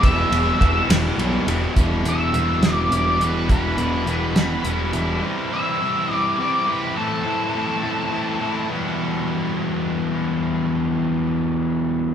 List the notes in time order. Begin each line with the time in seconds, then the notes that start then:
0.02 E1 E2 B2 E3 G3 B3 E4 E5, kick, ride
0.31 E1 E2 B2 E3 G3 B3 E4, ride
0.60 E1 E2 B2 E3 G3 B3 E4, kick, ride
0.88 E1 E2 B2 E3 G3 B3 E4, snare, ride
1.17 B1 E2 B2 E3 G3 B3 E4, ride
1.46 E1 E2 B2 E3 G3 B3 E4, ride
1.76 E1 E2 B2 E3 G3 B3 E4, kick, closed hi-hat
2.04 E1 E2 B2 E3 G3 B3 E4, closed hi-hat
2.09 E5
2.33 E1 E2 B2 E3 G3 B3 E4, closed hi-hat
2.62 E1 E2 B2 E3 G3 B3 E4, snare, closed hi-hat
2.70 D5
2.90 E1 E2 B2 E3 G3 B3 E4 D5, closed hi-hat
3.19 E1 E2 B2 E3 G3 B3 E4, closed hi-hat
3.23 B4
3.48 E1 E2 B2 E3 G3 B3 E4 B4, kick, closed hi-hat
3.77 E1 E2 B2 E3 G3 B3 E4, closed hi-hat
4.06 E1 E2 B2 E3 G3 B3 E4, closed hi-hat
4.34 E2 B2 E3 G3 B3 E4, snare, closed hi-hat
4.63 E1 E2 B2 E3 G3 B3 E4, closed hi-hat
4.92 E1 E2 B2 E3 G3 B3 E4, closed hi-hat
5.22 C3 E3 G3 C4 E4
5.51 C3 E3 G3 C4 E4 E5
5.81 C3 E3 G3 C4 E4
6.09 C3 E3 G3 C4 E4 D5
6.38 C3 E3 G3 C4 E4 D5
6.66 C3 E3 G3 C4 E4 B4
6.95 A2 E3 A3 C4 E4 A4
7.25 A2 E3 A3 C4 E4
7.54 A2 E3 A3 C4 E4
7.83 A2 E3 A3 C4 E4
8.11 A2 E3 A3 C4 E4
8.41 A2 E3 A3 C4 E4
8.69 E2 B2 E3 G3 B3
8.73 E4